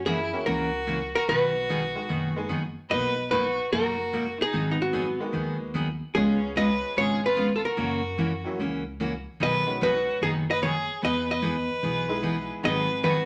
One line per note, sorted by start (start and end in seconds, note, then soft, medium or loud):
0.00 0.31 F#2 loud
0.06 0.18 C#3 medium
0.06 0.18 E3 medium
0.06 0.18 A#3 medium
0.06 0.18 C#4 medium
0.06 0.44 E4 medium
0.06 0.18 F#4 medium
0.06 0.44 G#4 medium
0.33 0.45 A#3 medium
0.33 0.45 C#4 medium
0.33 0.45 E4 medium
0.33 0.46 F#4 medium
0.46 1.12 C#2 medium
0.46 0.69 C#3 medium
0.46 0.69 E3 medium
0.46 0.69 A#3 medium
0.46 0.69 C#4 medium
0.46 0.69 F#4 medium
0.46 1.11 F#4 medium
0.46 1.14 A#4 medium
0.87 0.99 C#3 medium
0.87 0.99 E3 medium
0.87 0.99 A#3 medium
0.87 0.99 C#4 medium
0.87 0.99 F#4 medium
1.15 1.28 F#4 medium
1.15 1.29 A#4 loud
1.28 1.93 B1 medium
1.28 1.51 B2 medium
1.28 1.51 D#3 medium
1.28 1.51 F#3 medium
1.28 1.51 B3 medium
1.28 1.51 D#4 medium
1.28 2.47 F#4 medium
1.28 1.51 G#4 medium
1.28 2.46 B4 loud
1.69 1.81 B2 medium
1.69 1.81 D#3 medium
1.69 1.81 F#3 medium
1.69 1.81 B3 medium
1.69 1.81 D#4 medium
1.69 1.81 G#4 medium
1.95 2.08 G#3 medium
1.95 2.08 B3 soft
1.95 2.08 D#4 soft
1.95 2.08 F#4 medium
2.09 2.75 F#1 medium
2.09 2.32 B2 soft
2.09 2.32 D#3 medium
2.09 2.32 F#3 medium
2.09 2.32 B3 medium
2.09 2.32 D#4 medium
2.09 2.32 G#4 medium
2.36 2.48 G#3 medium
2.36 2.48 B3 medium
2.36 2.49 D#4 medium
2.36 2.49 G#4 medium
2.49 2.61 B2 medium
2.49 2.62 D#3 medium
2.49 2.61 F#3 medium
2.49 2.62 B3 medium
2.49 2.62 D#4 medium
2.49 2.62 G#4 medium
2.90 3.56 B1 medium
2.90 3.13 B2 medium
2.90 3.13 F#3 medium
2.90 3.13 A#3 medium
2.90 3.13 D#4 medium
2.90 3.13 F#4 medium
2.90 3.28 B4 medium
2.90 3.29 D#5 loud
3.31 3.43 B2 medium
3.31 3.43 F#3 medium
3.31 3.43 A#3 medium
3.31 3.44 D#4 medium
3.31 3.69 F#4 medium
3.31 3.44 F#4 medium
3.31 3.72 B4 loud
3.72 4.37 F#1 medium
3.72 3.95 B2 soft
3.72 3.95 F#3 medium
3.72 3.95 A#3 medium
3.72 3.95 D#4 medium
3.72 4.35 F#4 medium
3.72 3.95 F#4 medium
3.72 4.42 A#4 medium
4.13 4.25 B2 medium
4.13 4.25 F#3 medium
4.13 4.25 A#3 medium
4.13 4.25 D#4 medium
4.13 4.25 F#4 medium
4.40 4.69 D#4 medium
4.40 4.70 G#4 medium
4.53 5.19 G#1 medium
4.53 4.76 D#3 medium
4.53 4.76 F#3 medium
4.53 4.76 B3 medium
4.53 4.76 D#4 medium
4.53 4.76 G#4 medium
4.71 4.80 B3 medium
4.71 4.80 D#4 medium
4.82 5.19 B3 medium
4.82 5.19 F#4 medium
4.92 5.05 D#3 medium
4.92 5.05 F#3 medium
4.92 5.06 B3 medium
4.92 5.06 D#4 medium
4.92 5.06 G#4 medium
5.20 5.72 G#3 medium
5.20 5.72 A#3 medium
5.20 5.72 B3 medium
5.20 5.73 D#4 medium
5.20 5.73 F#4 medium
5.33 6.00 D#2 medium
5.33 5.56 D#3 medium
5.33 5.56 F#3 medium
5.33 5.56 B3 medium
5.33 5.57 D#4 medium
5.33 5.57 G#4 medium
5.74 5.86 D#3 medium
5.74 5.87 F#3 medium
5.74 5.87 B3 medium
5.74 5.87 D#4 medium
5.74 5.87 G#4 medium
6.15 6.81 C#2 loud
6.15 6.38 C#3 medium
6.15 6.38 G#3 medium
6.15 7.29 G#3 medium
6.15 6.38 B3 medium
6.15 7.30 B3 medium
6.15 6.53 C#4 medium
6.15 7.29 C#4 medium
6.15 6.38 F4 medium
6.15 7.30 F4 soft
6.15 6.57 G#4 loud
6.15 6.39 G#4 medium
6.15 7.30 G#4 medium
6.56 6.68 C#3 medium
6.56 6.68 G#3 medium
6.56 6.68 B3 medium
6.56 6.68 F4 medium
6.56 6.69 G#4 medium
6.56 6.95 B4 medium
6.56 6.97 D#5 loud
6.96 7.62 G#1 medium
6.96 7.19 C#3 medium
6.96 7.19 G#3 medium
6.96 7.19 B3 medium
6.96 7.20 F4 medium
6.96 7.20 G#4 medium
6.96 7.23 G#4 medium
6.96 7.25 C#5 medium
7.26 7.54 F4 medium
7.26 7.54 B4 medium
7.36 7.49 C#3 medium
7.36 7.49 G#3 medium
7.36 7.49 B3 medium
7.36 7.49 F4 medium
7.36 7.49 G#4 medium
7.56 7.65 F4 medium
7.56 7.65 A4 medium
7.65 8.43 F#4 medium
7.65 8.42 A#4 medium
7.77 8.43 F#2 medium
7.77 8.00 C#3 medium
7.77 8.00 E3 medium
7.77 8.00 A#3 medium
7.77 8.00 C#4 medium
7.77 8.00 F#4 medium
8.18 8.30 C#3 medium
8.18 8.30 E3 medium
8.18 8.30 A#3 medium
8.18 8.31 C#4 medium
8.18 8.31 F#4 medium
8.44 8.57 F#3 medium
8.44 8.57 A#3 medium
8.44 8.58 C#4 medium
8.44 8.58 E4 medium
8.44 8.58 F#4 medium
8.59 9.24 C#2 medium
8.59 8.82 C#3 medium
8.59 8.82 E3 medium
8.59 8.82 A#3 medium
8.59 8.82 C#4 medium
8.59 8.82 F#4 medium
9.00 9.12 C#3 medium
9.00 9.12 E3 medium
9.00 9.12 A#3 medium
9.00 9.12 C#4 medium
9.00 9.12 F#4 medium
9.40 10.05 B1 medium
9.40 9.63 B2 medium
9.40 9.63 D#3 medium
9.40 9.63 F#3 medium
9.40 9.63 B3 medium
9.40 9.63 D#4 medium
9.40 9.63 G#4 medium
9.40 9.79 B4 medium
9.40 9.79 D#5 medium
9.66 10.18 G#3 medium
9.66 10.18 B3 medium
9.66 10.19 C#4 medium
9.66 10.19 D#4 medium
9.66 10.19 F#4 medium
9.81 9.93 B2 medium
9.81 9.93 D#3 medium
9.81 9.93 F#3 medium
9.81 9.93 B3 medium
9.81 9.93 D#4 medium
9.81 10.20 F#4 medium
9.81 9.93 G#4 medium
9.81 10.22 B4 medium
10.22 10.86 F#1 medium
10.22 10.44 B2 soft
10.22 10.44 D#3 medium
10.22 10.44 F#3 medium
10.22 10.45 B3 medium
10.22 10.45 D#4 medium
10.22 10.35 D#4 medium
10.22 10.30 G#4 medium
10.22 10.45 G#4 medium
10.51 10.62 B4 medium
10.51 10.62 D#5 loud
10.62 10.74 B2 medium
10.62 10.74 D#3 medium
10.62 10.74 F#3 medium
10.62 10.74 B3 medium
10.62 10.74 D#4 medium
10.62 10.74 G#4 medium
10.62 11.01 G#4 medium
10.62 11.04 C#5 medium
11.02 11.68 E2 medium
11.02 11.25 E3 medium
11.02 11.25 B3 medium
11.02 11.25 D#4 medium
11.02 11.26 G#4 medium
11.02 11.28 B4 medium
11.02 11.30 D#5 loud
11.31 12.48 B4 medium
11.31 12.48 D#5 loud
11.42 11.54 E3 medium
11.42 11.54 B3 medium
11.42 11.54 D#4 medium
11.42 11.55 G#4 medium
11.83 12.48 B1 medium
11.83 12.06 E3 medium
11.83 12.06 B3 medium
11.83 12.06 D#4 medium
11.83 12.06 G#4 medium
12.08 12.61 G#3 medium
12.08 12.61 B3 medium
12.08 12.61 D#4 medium
12.08 12.61 E4 medium
12.08 12.61 G#4 medium
12.23 12.35 E3 medium
12.23 12.35 B3 medium
12.23 12.35 D#4 medium
12.23 12.36 G#4 medium
12.63 13.25 G#1 loud
12.63 12.86 D#3 medium
12.63 12.86 F#3 medium
12.63 13.25 G#3 medium
12.63 13.25 B3 medium
12.63 12.87 B3 medium
12.63 12.86 D#4 medium
12.63 13.25 D#4 medium
12.63 13.25 F#4 soft
12.63 12.87 G#4 medium
12.63 13.25 G#4 medium
12.63 13.03 B4 medium
12.63 13.06 D#5 loud
13.03 13.16 D#3 medium
13.03 13.16 F#3 medium
13.03 13.16 B3 medium
13.03 13.16 D#4 medium
13.03 13.25 F#4 medium
13.03 13.17 G#4 medium
13.03 13.25 B4 medium